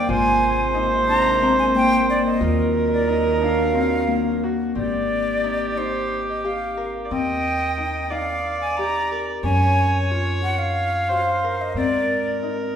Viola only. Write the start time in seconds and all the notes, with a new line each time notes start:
Already playing: D5
0.09 C5
2.42 A#4
4.43 F#4
4.78 G4
7.05 D5
7.12 D#5
8.11 D5
9.43 C#5
11.09 C5
11.76 A#4